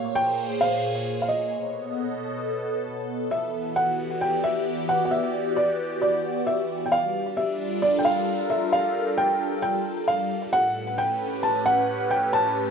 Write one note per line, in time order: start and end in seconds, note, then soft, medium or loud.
0.00 1.52 A#2 medium
0.00 1.52 A#3 medium
0.00 1.52 C5 medium
0.00 3.33 C#5 medium
0.00 0.17 F5 loud
0.11 1.52 G#4 medium
0.15 0.63 G5 loud
0.61 1.19 F5 loud
1.22 1.29 F5 medium
1.29 2.83 D#5 medium
1.52 3.33 B2 medium
1.52 6.94 B3 medium
1.64 4.54 A4 medium
1.69 3.33 D#5 medium
3.31 6.94 E3 medium
3.31 3.78 E5 medium
3.55 6.94 F#4 medium
3.76 4.19 F#5 medium
3.85 7.64 G4 medium
3.99 8.06 D5 medium
4.21 4.43 G5 medium
4.44 4.86 E5 loud
4.89 5.04 F#5 medium
5.05 5.12 F#5 medium
5.11 5.59 E5 medium
5.56 6.00 D5 medium
6.02 6.49 D5 medium
6.47 6.80 E5 medium
6.86 6.93 G5 medium
6.92 10.54 G3 medium
6.92 7.39 F5 loud
7.12 10.54 D4 medium
7.37 10.54 F4 medium
7.37 7.84 E5 medium
7.48 11.62 A4 medium
7.82 10.54 A#4 medium
7.82 8.00 D5 medium
7.99 8.06 G5 medium
8.05 8.52 F5 loud
8.50 8.71 E5 medium
8.73 9.20 F5 loud
9.18 9.61 G5 loud
9.62 10.10 G5 loud
10.08 10.41 F5 loud
10.53 12.70 A2 medium
10.53 11.00 F#5 loud
10.69 12.70 A3 medium
10.69 12.70 C#4 medium
10.69 12.70 B4 medium
10.98 11.45 G5 loud
11.14 12.70 G4 medium
11.43 11.65 A5 loud
11.66 12.13 F#5 loud
12.11 12.35 G5 loud
12.33 12.70 A5 loud